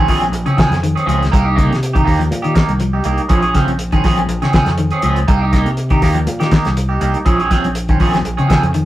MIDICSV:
0, 0, Header, 1, 7, 480
1, 0, Start_track
1, 0, Tempo, 495050
1, 1280, Time_signature, 4, 2, 24, 8
1, 8582, End_track
2, 0, Start_track
2, 0, Title_t, "Clean electric guitar"
2, 0, Program_c, 0, 27
2, 81, Note_on_c, 0, 53, 62
2, 82, Note_on_c, 0, 60, 63
2, 86, Note_on_c, 0, 61, 71
2, 90, Note_on_c, 0, 68, 72
2, 229, Note_off_c, 0, 53, 0
2, 230, Note_off_c, 0, 60, 0
2, 232, Note_off_c, 0, 61, 0
2, 234, Note_off_c, 0, 68, 0
2, 445, Note_on_c, 0, 68, 57
2, 453, Note_on_c, 0, 61, 53
2, 454, Note_on_c, 0, 60, 42
2, 552, Note_off_c, 0, 60, 0
2, 555, Note_off_c, 0, 61, 0
2, 559, Note_off_c, 0, 68, 0
2, 561, Note_on_c, 0, 53, 63
2, 564, Note_on_c, 0, 60, 60
2, 566, Note_on_c, 0, 61, 66
2, 571, Note_on_c, 0, 68, 63
2, 710, Note_off_c, 0, 53, 0
2, 711, Note_off_c, 0, 60, 0
2, 712, Note_off_c, 0, 61, 0
2, 715, Note_off_c, 0, 68, 0
2, 925, Note_on_c, 0, 68, 56
2, 928, Note_on_c, 0, 61, 48
2, 934, Note_on_c, 0, 60, 45
2, 1022, Note_off_c, 0, 60, 0
2, 1022, Note_off_c, 0, 61, 0
2, 1029, Note_off_c, 0, 68, 0
2, 1032, Note_on_c, 0, 53, 63
2, 1033, Note_on_c, 0, 60, 65
2, 1034, Note_on_c, 0, 61, 61
2, 1041, Note_on_c, 0, 68, 75
2, 1185, Note_off_c, 0, 53, 0
2, 1186, Note_off_c, 0, 60, 0
2, 1186, Note_off_c, 0, 61, 0
2, 1190, Note_off_c, 0, 68, 0
2, 1273, Note_on_c, 0, 58, 77
2, 1277, Note_on_c, 0, 63, 76
2, 1282, Note_on_c, 0, 67, 82
2, 1387, Note_off_c, 0, 67, 0
2, 1396, Note_off_c, 0, 63, 0
2, 1398, Note_on_c, 0, 67, 58
2, 1403, Note_off_c, 0, 58, 0
2, 1408, Note_on_c, 0, 63, 45
2, 1503, Note_off_c, 0, 63, 0
2, 1505, Note_off_c, 0, 67, 0
2, 1506, Note_on_c, 0, 58, 66
2, 1515, Note_on_c, 0, 63, 72
2, 1517, Note_on_c, 0, 67, 74
2, 1663, Note_off_c, 0, 58, 0
2, 1667, Note_off_c, 0, 63, 0
2, 1668, Note_off_c, 0, 67, 0
2, 1876, Note_on_c, 0, 67, 57
2, 1891, Note_on_c, 0, 63, 48
2, 1973, Note_off_c, 0, 63, 0
2, 1979, Note_off_c, 0, 67, 0
2, 1979, Note_on_c, 0, 58, 56
2, 1984, Note_on_c, 0, 63, 58
2, 1991, Note_on_c, 0, 67, 68
2, 2139, Note_off_c, 0, 58, 0
2, 2142, Note_off_c, 0, 63, 0
2, 2145, Note_off_c, 0, 67, 0
2, 2349, Note_on_c, 0, 67, 54
2, 2364, Note_on_c, 0, 63, 42
2, 2463, Note_off_c, 0, 63, 0
2, 2467, Note_on_c, 0, 58, 60
2, 2471, Note_off_c, 0, 67, 0
2, 2475, Note_on_c, 0, 63, 64
2, 2482, Note_on_c, 0, 67, 67
2, 2624, Note_off_c, 0, 58, 0
2, 2627, Note_off_c, 0, 63, 0
2, 2631, Note_off_c, 0, 67, 0
2, 2844, Note_on_c, 0, 67, 51
2, 2854, Note_on_c, 0, 63, 42
2, 2948, Note_off_c, 0, 63, 0
2, 2952, Note_off_c, 0, 67, 0
2, 2953, Note_on_c, 0, 58, 58
2, 2960, Note_on_c, 0, 63, 61
2, 2964, Note_on_c, 0, 67, 63
2, 3106, Note_off_c, 0, 58, 0
2, 3110, Note_off_c, 0, 63, 0
2, 3112, Note_off_c, 0, 67, 0
2, 3187, Note_on_c, 0, 53, 73
2, 3190, Note_on_c, 0, 60, 65
2, 3193, Note_on_c, 0, 68, 82
2, 3195, Note_on_c, 0, 61, 75
2, 3309, Note_off_c, 0, 68, 0
2, 3315, Note_off_c, 0, 61, 0
2, 3321, Note_off_c, 0, 53, 0
2, 3321, Note_on_c, 0, 68, 51
2, 3322, Note_off_c, 0, 60, 0
2, 3327, Note_on_c, 0, 61, 47
2, 3431, Note_on_c, 0, 53, 61
2, 3432, Note_off_c, 0, 61, 0
2, 3438, Note_off_c, 0, 68, 0
2, 3439, Note_on_c, 0, 60, 62
2, 3444, Note_on_c, 0, 61, 61
2, 3586, Note_off_c, 0, 53, 0
2, 3590, Note_off_c, 0, 60, 0
2, 3592, Note_off_c, 0, 61, 0
2, 3806, Note_on_c, 0, 68, 58
2, 3810, Note_on_c, 0, 61, 53
2, 3818, Note_on_c, 0, 60, 45
2, 3907, Note_off_c, 0, 60, 0
2, 3910, Note_off_c, 0, 61, 0
2, 3914, Note_off_c, 0, 68, 0
2, 3917, Note_on_c, 0, 53, 57
2, 3919, Note_on_c, 0, 60, 62
2, 3922, Note_on_c, 0, 61, 67
2, 3926, Note_on_c, 0, 68, 69
2, 4069, Note_off_c, 0, 53, 0
2, 4070, Note_off_c, 0, 60, 0
2, 4071, Note_off_c, 0, 61, 0
2, 4073, Note_off_c, 0, 68, 0
2, 4286, Note_on_c, 0, 68, 56
2, 4294, Note_on_c, 0, 61, 48
2, 4299, Note_on_c, 0, 60, 43
2, 4386, Note_off_c, 0, 60, 0
2, 4390, Note_off_c, 0, 61, 0
2, 4390, Note_off_c, 0, 68, 0
2, 4395, Note_on_c, 0, 53, 66
2, 4397, Note_on_c, 0, 60, 63
2, 4402, Note_on_c, 0, 61, 72
2, 4402, Note_on_c, 0, 68, 65
2, 4548, Note_off_c, 0, 53, 0
2, 4549, Note_off_c, 0, 60, 0
2, 4551, Note_off_c, 0, 61, 0
2, 4551, Note_off_c, 0, 68, 0
2, 4767, Note_on_c, 0, 68, 61
2, 4774, Note_on_c, 0, 61, 51
2, 4778, Note_on_c, 0, 60, 48
2, 4872, Note_off_c, 0, 60, 0
2, 4875, Note_off_c, 0, 61, 0
2, 4876, Note_off_c, 0, 68, 0
2, 4881, Note_on_c, 0, 53, 58
2, 4884, Note_on_c, 0, 60, 64
2, 4887, Note_on_c, 0, 61, 60
2, 4887, Note_on_c, 0, 68, 61
2, 5031, Note_off_c, 0, 53, 0
2, 5032, Note_off_c, 0, 60, 0
2, 5034, Note_off_c, 0, 61, 0
2, 5034, Note_off_c, 0, 68, 0
2, 5115, Note_on_c, 0, 58, 77
2, 5120, Note_on_c, 0, 63, 73
2, 5120, Note_on_c, 0, 67, 76
2, 5234, Note_off_c, 0, 67, 0
2, 5245, Note_off_c, 0, 58, 0
2, 5245, Note_off_c, 0, 63, 0
2, 5245, Note_on_c, 0, 67, 53
2, 5257, Note_on_c, 0, 63, 46
2, 5349, Note_off_c, 0, 63, 0
2, 5351, Note_on_c, 0, 58, 57
2, 5352, Note_off_c, 0, 67, 0
2, 5361, Note_on_c, 0, 63, 60
2, 5363, Note_on_c, 0, 67, 72
2, 5505, Note_off_c, 0, 58, 0
2, 5510, Note_off_c, 0, 63, 0
2, 5512, Note_off_c, 0, 67, 0
2, 5725, Note_on_c, 0, 67, 55
2, 5733, Note_on_c, 0, 63, 47
2, 5835, Note_off_c, 0, 63, 0
2, 5837, Note_off_c, 0, 67, 0
2, 5839, Note_on_c, 0, 58, 58
2, 5847, Note_on_c, 0, 63, 66
2, 5849, Note_on_c, 0, 67, 66
2, 5990, Note_off_c, 0, 58, 0
2, 5993, Note_off_c, 0, 63, 0
2, 5994, Note_off_c, 0, 67, 0
2, 6203, Note_on_c, 0, 67, 55
2, 6218, Note_on_c, 0, 63, 46
2, 6309, Note_off_c, 0, 63, 0
2, 6312, Note_on_c, 0, 58, 64
2, 6314, Note_off_c, 0, 67, 0
2, 6320, Note_on_c, 0, 63, 61
2, 6325, Note_on_c, 0, 67, 74
2, 6466, Note_off_c, 0, 58, 0
2, 6470, Note_off_c, 0, 63, 0
2, 6472, Note_off_c, 0, 67, 0
2, 6678, Note_on_c, 0, 67, 52
2, 6692, Note_on_c, 0, 63, 41
2, 6786, Note_off_c, 0, 63, 0
2, 6791, Note_off_c, 0, 67, 0
2, 6793, Note_on_c, 0, 58, 58
2, 6798, Note_on_c, 0, 63, 65
2, 6803, Note_on_c, 0, 67, 74
2, 6946, Note_off_c, 0, 58, 0
2, 6949, Note_off_c, 0, 63, 0
2, 6951, Note_off_c, 0, 67, 0
2, 7031, Note_on_c, 0, 53, 77
2, 7036, Note_on_c, 0, 60, 75
2, 7039, Note_on_c, 0, 61, 78
2, 7039, Note_on_c, 0, 68, 74
2, 7162, Note_off_c, 0, 68, 0
2, 7163, Note_off_c, 0, 53, 0
2, 7165, Note_off_c, 0, 60, 0
2, 7166, Note_off_c, 0, 61, 0
2, 7173, Note_on_c, 0, 68, 50
2, 7179, Note_on_c, 0, 61, 51
2, 7182, Note_on_c, 0, 60, 46
2, 7270, Note_off_c, 0, 60, 0
2, 7275, Note_off_c, 0, 61, 0
2, 7276, Note_off_c, 0, 68, 0
2, 7276, Note_on_c, 0, 53, 61
2, 7281, Note_on_c, 0, 60, 72
2, 7286, Note_on_c, 0, 61, 66
2, 7288, Note_on_c, 0, 68, 68
2, 7427, Note_off_c, 0, 53, 0
2, 7430, Note_off_c, 0, 60, 0
2, 7432, Note_off_c, 0, 61, 0
2, 7433, Note_off_c, 0, 68, 0
2, 7655, Note_on_c, 0, 61, 49
2, 7657, Note_on_c, 0, 60, 46
2, 7750, Note_off_c, 0, 60, 0
2, 7753, Note_off_c, 0, 61, 0
2, 7755, Note_on_c, 0, 53, 70
2, 7762, Note_on_c, 0, 60, 70
2, 7764, Note_on_c, 0, 61, 66
2, 7765, Note_on_c, 0, 68, 68
2, 7907, Note_off_c, 0, 53, 0
2, 7910, Note_off_c, 0, 60, 0
2, 7911, Note_off_c, 0, 61, 0
2, 7911, Note_off_c, 0, 68, 0
2, 8118, Note_on_c, 0, 68, 53
2, 8122, Note_on_c, 0, 61, 45
2, 8128, Note_on_c, 0, 60, 43
2, 8218, Note_off_c, 0, 60, 0
2, 8223, Note_off_c, 0, 61, 0
2, 8223, Note_on_c, 0, 53, 65
2, 8228, Note_off_c, 0, 68, 0
2, 8230, Note_on_c, 0, 60, 65
2, 8235, Note_on_c, 0, 61, 67
2, 8239, Note_on_c, 0, 68, 69
2, 8380, Note_off_c, 0, 53, 0
2, 8384, Note_off_c, 0, 60, 0
2, 8386, Note_off_c, 0, 61, 0
2, 8388, Note_off_c, 0, 68, 0
2, 8582, End_track
3, 0, Start_track
3, 0, Title_t, "Clean electric guitar"
3, 0, Program_c, 1, 27
3, 0, Note_on_c, 1, 51, 71
3, 154, Note_off_c, 1, 51, 0
3, 214, Note_on_c, 1, 53, 66
3, 397, Note_off_c, 1, 53, 0
3, 444, Note_on_c, 1, 49, 75
3, 533, Note_off_c, 1, 49, 0
3, 557, Note_on_c, 1, 49, 77
3, 745, Note_off_c, 1, 49, 0
3, 806, Note_on_c, 1, 51, 78
3, 990, Note_off_c, 1, 51, 0
3, 1038, Note_on_c, 1, 53, 76
3, 1226, Note_off_c, 1, 53, 0
3, 1518, Note_on_c, 1, 49, 70
3, 1706, Note_off_c, 1, 49, 0
3, 1890, Note_on_c, 1, 51, 69
3, 2076, Note_off_c, 1, 51, 0
3, 2126, Note_on_c, 1, 53, 68
3, 2313, Note_off_c, 1, 53, 0
3, 2370, Note_on_c, 1, 51, 66
3, 2457, Note_off_c, 1, 51, 0
3, 2484, Note_on_c, 1, 51, 73
3, 2670, Note_off_c, 1, 51, 0
3, 2721, Note_on_c, 1, 53, 69
3, 2908, Note_off_c, 1, 53, 0
3, 2960, Note_on_c, 1, 55, 69
3, 3148, Note_off_c, 1, 55, 0
3, 3435, Note_on_c, 1, 49, 71
3, 3624, Note_off_c, 1, 49, 0
3, 3805, Note_on_c, 1, 51, 66
3, 3993, Note_off_c, 1, 51, 0
3, 4047, Note_on_c, 1, 53, 67
3, 4234, Note_off_c, 1, 53, 0
3, 4285, Note_on_c, 1, 49, 67
3, 4374, Note_off_c, 1, 49, 0
3, 4403, Note_on_c, 1, 49, 73
3, 4589, Note_off_c, 1, 49, 0
3, 4639, Note_on_c, 1, 51, 74
3, 4827, Note_off_c, 1, 51, 0
3, 4875, Note_on_c, 1, 53, 75
3, 5064, Note_off_c, 1, 53, 0
3, 5728, Note_on_c, 1, 51, 71
3, 5914, Note_off_c, 1, 51, 0
3, 5961, Note_on_c, 1, 53, 69
3, 6150, Note_off_c, 1, 53, 0
3, 6207, Note_on_c, 1, 51, 69
3, 6295, Note_off_c, 1, 51, 0
3, 6319, Note_on_c, 1, 51, 74
3, 6506, Note_off_c, 1, 51, 0
3, 6808, Note_on_c, 1, 55, 70
3, 6991, Note_off_c, 1, 55, 0
3, 7652, Note_on_c, 1, 51, 67
3, 7836, Note_off_c, 1, 51, 0
3, 7896, Note_on_c, 1, 53, 63
3, 8079, Note_off_c, 1, 53, 0
3, 8130, Note_on_c, 1, 49, 73
3, 8216, Note_off_c, 1, 49, 0
3, 8244, Note_on_c, 1, 49, 73
3, 8428, Note_off_c, 1, 49, 0
3, 8480, Note_on_c, 1, 51, 74
3, 8582, Note_off_c, 1, 51, 0
3, 8582, End_track
4, 0, Start_track
4, 0, Title_t, "Fingered electric bass"
4, 0, Program_c, 2, 33
4, 77, Note_on_c, 2, 34, 90
4, 302, Note_off_c, 2, 34, 0
4, 308, Note_on_c, 2, 34, 88
4, 434, Note_off_c, 2, 34, 0
4, 679, Note_on_c, 2, 41, 80
4, 910, Note_off_c, 2, 41, 0
4, 1033, Note_on_c, 2, 37, 77
4, 1265, Note_off_c, 2, 37, 0
4, 1290, Note_on_c, 2, 36, 86
4, 1634, Note_off_c, 2, 36, 0
4, 1655, Note_on_c, 2, 48, 80
4, 1987, Note_off_c, 2, 48, 0
4, 2004, Note_on_c, 2, 39, 88
4, 2231, Note_off_c, 2, 39, 0
4, 2241, Note_on_c, 2, 46, 98
4, 2469, Note_off_c, 2, 46, 0
4, 2602, Note_on_c, 2, 36, 77
4, 2940, Note_off_c, 2, 36, 0
4, 2953, Note_on_c, 2, 36, 77
4, 3078, Note_off_c, 2, 36, 0
4, 3204, Note_on_c, 2, 34, 96
4, 3431, Note_off_c, 2, 34, 0
4, 3566, Note_on_c, 2, 34, 85
4, 3902, Note_off_c, 2, 34, 0
4, 3921, Note_on_c, 2, 34, 83
4, 4149, Note_off_c, 2, 34, 0
4, 4154, Note_on_c, 2, 34, 88
4, 4278, Note_off_c, 2, 34, 0
4, 4515, Note_on_c, 2, 41, 79
4, 4749, Note_off_c, 2, 41, 0
4, 4877, Note_on_c, 2, 37, 76
4, 5107, Note_off_c, 2, 37, 0
4, 5124, Note_on_c, 2, 36, 95
4, 5471, Note_off_c, 2, 36, 0
4, 5481, Note_on_c, 2, 48, 84
4, 5820, Note_off_c, 2, 48, 0
4, 5835, Note_on_c, 2, 39, 87
4, 6066, Note_off_c, 2, 39, 0
4, 6080, Note_on_c, 2, 46, 95
4, 6308, Note_off_c, 2, 46, 0
4, 6451, Note_on_c, 2, 36, 78
4, 6784, Note_off_c, 2, 36, 0
4, 6800, Note_on_c, 2, 36, 83
4, 6921, Note_off_c, 2, 36, 0
4, 7038, Note_on_c, 2, 34, 96
4, 7267, Note_off_c, 2, 34, 0
4, 7414, Note_on_c, 2, 34, 86
4, 7745, Note_off_c, 2, 34, 0
4, 7759, Note_on_c, 2, 34, 87
4, 7987, Note_off_c, 2, 34, 0
4, 7996, Note_on_c, 2, 34, 92
4, 8117, Note_off_c, 2, 34, 0
4, 8367, Note_on_c, 2, 41, 81
4, 8582, Note_off_c, 2, 41, 0
4, 8582, End_track
5, 0, Start_track
5, 0, Title_t, "Muted clean electric guitar strokes"
5, 6563, Note_on_c, 9, 29, 73
5, 6660, Note_off_c, 9, 29, 0
5, 8582, End_track
6, 0, Start_track
6, 0, Title_t, "Muted fingered electric bass strokes"
6, 930, Note_on_c, 9, 29, 38
6, 1027, Note_off_c, 9, 29, 0
6, 2479, Note_on_c, 9, 29, 30
6, 2576, Note_off_c, 9, 29, 0
6, 4762, Note_on_c, 9, 29, 36
6, 4859, Note_off_c, 9, 29, 0
6, 6324, Note_on_c, 9, 29, 36
6, 6421, Note_off_c, 9, 29, 0
6, 8582, End_track
7, 0, Start_track
7, 0, Title_t, "Drums"
7, 80, Note_on_c, 9, 46, 64
7, 82, Note_on_c, 9, 36, 60
7, 177, Note_off_c, 9, 46, 0
7, 179, Note_off_c, 9, 36, 0
7, 214, Note_on_c, 9, 42, 31
7, 311, Note_off_c, 9, 42, 0
7, 320, Note_on_c, 9, 42, 62
7, 417, Note_off_c, 9, 42, 0
7, 447, Note_on_c, 9, 42, 29
7, 544, Note_off_c, 9, 42, 0
7, 564, Note_on_c, 9, 42, 46
7, 565, Note_on_c, 9, 36, 64
7, 576, Note_on_c, 9, 38, 65
7, 661, Note_off_c, 9, 42, 0
7, 662, Note_off_c, 9, 36, 0
7, 673, Note_off_c, 9, 38, 0
7, 696, Note_on_c, 9, 42, 33
7, 708, Note_on_c, 9, 38, 28
7, 793, Note_off_c, 9, 42, 0
7, 805, Note_off_c, 9, 38, 0
7, 810, Note_on_c, 9, 42, 66
7, 907, Note_off_c, 9, 42, 0
7, 944, Note_on_c, 9, 42, 32
7, 1041, Note_off_c, 9, 42, 0
7, 1055, Note_on_c, 9, 42, 54
7, 1152, Note_off_c, 9, 42, 0
7, 1188, Note_on_c, 9, 42, 31
7, 1199, Note_on_c, 9, 38, 26
7, 1285, Note_off_c, 9, 42, 0
7, 1291, Note_on_c, 9, 36, 88
7, 1294, Note_on_c, 9, 42, 67
7, 1296, Note_off_c, 9, 38, 0
7, 1388, Note_off_c, 9, 36, 0
7, 1391, Note_off_c, 9, 42, 0
7, 1531, Note_on_c, 9, 36, 63
7, 1535, Note_on_c, 9, 42, 53
7, 1627, Note_off_c, 9, 36, 0
7, 1632, Note_off_c, 9, 42, 0
7, 1672, Note_on_c, 9, 42, 32
7, 1684, Note_on_c, 9, 38, 25
7, 1769, Note_off_c, 9, 42, 0
7, 1772, Note_on_c, 9, 42, 69
7, 1781, Note_off_c, 9, 38, 0
7, 1869, Note_off_c, 9, 42, 0
7, 1895, Note_on_c, 9, 36, 72
7, 1898, Note_on_c, 9, 42, 33
7, 1992, Note_off_c, 9, 36, 0
7, 1994, Note_off_c, 9, 42, 0
7, 2008, Note_on_c, 9, 36, 62
7, 2012, Note_on_c, 9, 46, 59
7, 2105, Note_off_c, 9, 36, 0
7, 2109, Note_off_c, 9, 46, 0
7, 2143, Note_on_c, 9, 42, 32
7, 2240, Note_off_c, 9, 42, 0
7, 2248, Note_on_c, 9, 42, 72
7, 2345, Note_off_c, 9, 42, 0
7, 2369, Note_on_c, 9, 42, 31
7, 2466, Note_off_c, 9, 42, 0
7, 2477, Note_on_c, 9, 42, 52
7, 2483, Note_on_c, 9, 36, 67
7, 2489, Note_on_c, 9, 38, 68
7, 2574, Note_off_c, 9, 42, 0
7, 2580, Note_off_c, 9, 36, 0
7, 2586, Note_off_c, 9, 38, 0
7, 2604, Note_on_c, 9, 42, 34
7, 2701, Note_off_c, 9, 42, 0
7, 2712, Note_on_c, 9, 42, 64
7, 2809, Note_off_c, 9, 42, 0
7, 2946, Note_on_c, 9, 42, 54
7, 3043, Note_off_c, 9, 42, 0
7, 3081, Note_on_c, 9, 42, 32
7, 3178, Note_off_c, 9, 42, 0
7, 3193, Note_on_c, 9, 42, 68
7, 3200, Note_on_c, 9, 36, 92
7, 3290, Note_off_c, 9, 42, 0
7, 3297, Note_off_c, 9, 36, 0
7, 3320, Note_on_c, 9, 42, 29
7, 3417, Note_off_c, 9, 42, 0
7, 3437, Note_on_c, 9, 42, 52
7, 3442, Note_on_c, 9, 36, 61
7, 3449, Note_on_c, 9, 38, 25
7, 3534, Note_off_c, 9, 42, 0
7, 3539, Note_off_c, 9, 36, 0
7, 3546, Note_off_c, 9, 38, 0
7, 3567, Note_on_c, 9, 42, 29
7, 3664, Note_off_c, 9, 42, 0
7, 3674, Note_on_c, 9, 42, 61
7, 3771, Note_off_c, 9, 42, 0
7, 3804, Note_on_c, 9, 42, 31
7, 3810, Note_on_c, 9, 36, 68
7, 3901, Note_off_c, 9, 42, 0
7, 3907, Note_off_c, 9, 36, 0
7, 3916, Note_on_c, 9, 46, 61
7, 3924, Note_on_c, 9, 36, 60
7, 3928, Note_on_c, 9, 38, 28
7, 4013, Note_off_c, 9, 46, 0
7, 4021, Note_off_c, 9, 36, 0
7, 4025, Note_off_c, 9, 38, 0
7, 4049, Note_on_c, 9, 42, 31
7, 4146, Note_off_c, 9, 42, 0
7, 4157, Note_on_c, 9, 42, 65
7, 4254, Note_off_c, 9, 42, 0
7, 4288, Note_on_c, 9, 42, 30
7, 4299, Note_on_c, 9, 38, 26
7, 4385, Note_off_c, 9, 42, 0
7, 4393, Note_on_c, 9, 42, 45
7, 4396, Note_off_c, 9, 38, 0
7, 4400, Note_on_c, 9, 36, 68
7, 4404, Note_on_c, 9, 38, 65
7, 4490, Note_off_c, 9, 42, 0
7, 4497, Note_off_c, 9, 36, 0
7, 4501, Note_off_c, 9, 38, 0
7, 4518, Note_on_c, 9, 42, 32
7, 4530, Note_on_c, 9, 38, 29
7, 4615, Note_off_c, 9, 42, 0
7, 4627, Note_off_c, 9, 38, 0
7, 4631, Note_on_c, 9, 42, 61
7, 4728, Note_off_c, 9, 42, 0
7, 4756, Note_on_c, 9, 42, 31
7, 4853, Note_off_c, 9, 42, 0
7, 4871, Note_on_c, 9, 42, 51
7, 4968, Note_off_c, 9, 42, 0
7, 5006, Note_on_c, 9, 42, 31
7, 5103, Note_off_c, 9, 42, 0
7, 5120, Note_on_c, 9, 42, 65
7, 5124, Note_on_c, 9, 36, 87
7, 5217, Note_off_c, 9, 42, 0
7, 5221, Note_off_c, 9, 36, 0
7, 5360, Note_on_c, 9, 42, 50
7, 5361, Note_on_c, 9, 36, 60
7, 5372, Note_on_c, 9, 38, 27
7, 5457, Note_off_c, 9, 42, 0
7, 5458, Note_off_c, 9, 36, 0
7, 5469, Note_off_c, 9, 38, 0
7, 5488, Note_on_c, 9, 42, 30
7, 5585, Note_off_c, 9, 42, 0
7, 5595, Note_on_c, 9, 42, 64
7, 5692, Note_off_c, 9, 42, 0
7, 5722, Note_on_c, 9, 42, 34
7, 5727, Note_on_c, 9, 36, 69
7, 5819, Note_off_c, 9, 42, 0
7, 5824, Note_off_c, 9, 36, 0
7, 5837, Note_on_c, 9, 46, 61
7, 5840, Note_on_c, 9, 36, 59
7, 5849, Note_on_c, 9, 38, 26
7, 5934, Note_off_c, 9, 46, 0
7, 5937, Note_off_c, 9, 36, 0
7, 5945, Note_off_c, 9, 38, 0
7, 5969, Note_on_c, 9, 42, 34
7, 6066, Note_off_c, 9, 42, 0
7, 6079, Note_on_c, 9, 42, 72
7, 6176, Note_off_c, 9, 42, 0
7, 6209, Note_on_c, 9, 42, 33
7, 6221, Note_on_c, 9, 38, 27
7, 6306, Note_off_c, 9, 42, 0
7, 6317, Note_on_c, 9, 42, 50
7, 6318, Note_off_c, 9, 38, 0
7, 6320, Note_on_c, 9, 36, 64
7, 6328, Note_on_c, 9, 38, 66
7, 6414, Note_off_c, 9, 42, 0
7, 6417, Note_off_c, 9, 36, 0
7, 6425, Note_off_c, 9, 38, 0
7, 6445, Note_on_c, 9, 42, 35
7, 6457, Note_on_c, 9, 38, 27
7, 6542, Note_off_c, 9, 42, 0
7, 6554, Note_off_c, 9, 38, 0
7, 6564, Note_on_c, 9, 42, 69
7, 6661, Note_off_c, 9, 42, 0
7, 6798, Note_on_c, 9, 42, 54
7, 6895, Note_off_c, 9, 42, 0
7, 6924, Note_on_c, 9, 42, 31
7, 7021, Note_off_c, 9, 42, 0
7, 7036, Note_on_c, 9, 42, 63
7, 7041, Note_on_c, 9, 36, 93
7, 7133, Note_off_c, 9, 42, 0
7, 7138, Note_off_c, 9, 36, 0
7, 7170, Note_on_c, 9, 42, 30
7, 7267, Note_off_c, 9, 42, 0
7, 7279, Note_on_c, 9, 42, 49
7, 7282, Note_on_c, 9, 36, 64
7, 7291, Note_on_c, 9, 38, 27
7, 7376, Note_off_c, 9, 42, 0
7, 7379, Note_off_c, 9, 36, 0
7, 7388, Note_off_c, 9, 38, 0
7, 7409, Note_on_c, 9, 42, 31
7, 7506, Note_off_c, 9, 42, 0
7, 7515, Note_on_c, 9, 42, 71
7, 7612, Note_off_c, 9, 42, 0
7, 7646, Note_on_c, 9, 42, 31
7, 7650, Note_on_c, 9, 36, 70
7, 7743, Note_off_c, 9, 42, 0
7, 7747, Note_off_c, 9, 36, 0
7, 7755, Note_on_c, 9, 46, 57
7, 7762, Note_on_c, 9, 36, 60
7, 7852, Note_off_c, 9, 46, 0
7, 7859, Note_off_c, 9, 36, 0
7, 7888, Note_on_c, 9, 42, 29
7, 7899, Note_on_c, 9, 38, 28
7, 7985, Note_off_c, 9, 42, 0
7, 7996, Note_off_c, 9, 38, 0
7, 8000, Note_on_c, 9, 42, 65
7, 8097, Note_off_c, 9, 42, 0
7, 8130, Note_on_c, 9, 42, 31
7, 8227, Note_off_c, 9, 42, 0
7, 8241, Note_on_c, 9, 42, 48
7, 8244, Note_on_c, 9, 36, 70
7, 8252, Note_on_c, 9, 38, 69
7, 8338, Note_off_c, 9, 42, 0
7, 8340, Note_off_c, 9, 36, 0
7, 8349, Note_off_c, 9, 38, 0
7, 8370, Note_on_c, 9, 42, 32
7, 8467, Note_off_c, 9, 42, 0
7, 8475, Note_on_c, 9, 42, 59
7, 8572, Note_off_c, 9, 42, 0
7, 8582, End_track
0, 0, End_of_file